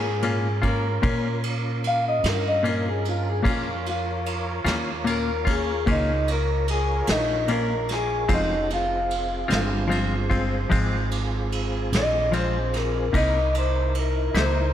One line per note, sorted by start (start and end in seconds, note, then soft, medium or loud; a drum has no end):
0.00 0.99 G#2 medium
0.00 3.41 C#4 medium
0.00 3.41 F4 medium
0.00 0.62 G#4 medium
0.00 3.41 A#4 medium
0.22 0.47 A#2 medium
0.22 0.47 A#3 medium
0.22 0.47 C#4 medium
0.22 0.48 F4 medium
0.22 ride medium
0.62 0.87 A#3 soft
0.62 0.87 C#4 soft
0.62 0.86 F4 soft
0.62 kick medium
0.62 ride medium
0.67 1.43 A#4 medium
1.02 1.27 A#2 medium
1.02 2.21 A#2 medium
1.02 1.27 A#3 medium
1.02 1.27 C#4 medium
1.02 1.27 F4 medium
1.02 kick loud
1.02 ride medium
1.44 ride medium
1.84 2.05 F5 loud
1.84 ride medium
2.08 2.26 D#5 medium
2.24 3.41 G2 medium
2.24 snare loud
2.24 ride medium
2.28 2.45 A#4 medium
2.48 2.66 D#5 medium
2.63 2.88 A#2 medium
2.63 2.88 A#3 medium
2.63 2.88 C#4 medium
2.63 2.89 F4 medium
2.63 ride medium
2.68 2.86 A#4 medium
2.89 3.06 G#4 medium
3.05 ride soft
3.09 3.26 F4 medium
3.30 3.47 G#4 medium
3.43 4.62 F2 medium
3.43 3.68 A#2 medium
3.43 3.68 A#3 medium
3.43 3.69 C#4 medium
3.43 8.24 F4 medium
3.43 3.69 F4 medium
3.43 8.25 A#4 medium
3.43 8.25 C#5 medium
3.43 kick loud
3.43 ride medium
3.50 3.86 F4 medium
3.86 4.26 F4 medium
3.86 ride medium
4.26 ride medium
4.64 5.83 D#2 medium
4.64 4.90 A#3 medium
4.64 4.90 C#4 medium
4.64 4.89 F4 medium
4.64 snare medium
4.64 ride medium
5.04 5.29 A#2 medium
5.04 5.30 A#3 medium
5.04 5.30 C#4 medium
5.04 5.31 F4 medium
5.04 ride medium
5.10 5.47 A#4 loud
5.45 5.71 A#3 soft
5.45 5.71 C#4 soft
5.45 5.70 F4 medium
5.45 kick medium
5.45 snare soft
5.45 ride medium
5.50 5.88 G#4 medium
5.86 7.04 C#2 medium
5.86 6.11 A#2 medium
5.86 6.11 A#3 medium
5.86 6.11 C#4 medium
5.86 6.12 F4 medium
5.86 kick loud
5.86 ride medium
5.91 6.28 D#4 loud
6.28 ride medium
6.32 6.69 A#4 medium
6.68 7.08 G#4 loud
6.68 ride medium
7.07 8.25 A#1 medium
7.07 snare loud
7.07 ride medium
7.11 7.49 D#4 medium
7.48 7.72 A#2 medium
7.48 7.72 A#3 medium
7.48 7.73 C#4 medium
7.48 7.73 F4 medium
7.48 7.89 A#4 loud
7.48 ride medium
7.89 snare soft
7.89 ride medium
7.93 8.30 G#4 medium
8.28 9.46 F1 medium
8.28 8.53 F3 medium
8.28 8.53 G#3 medium
8.28 8.54 C4 medium
8.28 8.69 C#4 medium
8.28 8.53 F4 medium
8.28 8.69 F#4 medium
8.28 8.69 A4 medium
8.28 kick loud
8.28 ride medium
8.34 8.71 D#4 medium
8.68 13.09 C4 medium
8.68 13.09 F4 medium
8.68 13.09 G#4 medium
8.68 ride medium
8.73 11.09 F4 loud
9.11 ride medium
9.48 10.67 G1 medium
9.48 9.74 G#3 soft
9.48 9.74 C4 soft
9.48 9.73 F4 medium
9.48 ride medium
9.52 snare loud
9.88 10.13 F3 medium
9.88 10.14 G#3 medium
9.88 10.14 C4 medium
9.88 10.14 F4 medium
9.88 ride medium
10.30 10.55 G#3 soft
10.30 10.55 C4 medium
10.30 10.54 F4 medium
10.30 kick medium
10.30 ride medium
10.70 11.89 G#1 medium
10.70 10.94 F3 medium
10.70 10.95 G#3 medium
10.70 10.95 C4 medium
10.70 10.96 F4 medium
10.70 kick loud
10.70 ride medium
11.11 ride medium
11.52 ride medium
11.93 13.10 A#1 medium
11.93 snare loud
11.93 ride medium
11.97 12.34 D#5 loud
12.32 12.56 F3 medium
12.32 12.57 G#3 medium
12.32 12.57 C4 medium
12.32 12.57 F4 medium
12.32 ride medium
12.36 12.73 C5 medium
12.74 13.14 A#4 medium
12.74 snare soft
12.74 ride medium
13.11 14.31 C2 medium
13.11 13.37 C3 medium
13.11 13.38 A#3 medium
13.11 14.73 D#4 medium
13.11 13.38 D#4 medium
13.11 14.73 E4 medium
13.11 13.38 E4 medium
13.11 14.73 A#4 medium
13.11 kick medium
13.11 ride medium
13.17 13.54 D#5 medium
13.55 13.95 C5 medium
13.55 ride medium
13.95 ride medium
13.99 14.36 A#4 medium
14.34 14.73 C#2 medium
14.34 14.59 A#3 soft
14.34 14.59 D#4 medium
14.34 14.59 E4 medium
14.34 snare loud
14.34 ride medium
14.39 14.73 C5 medium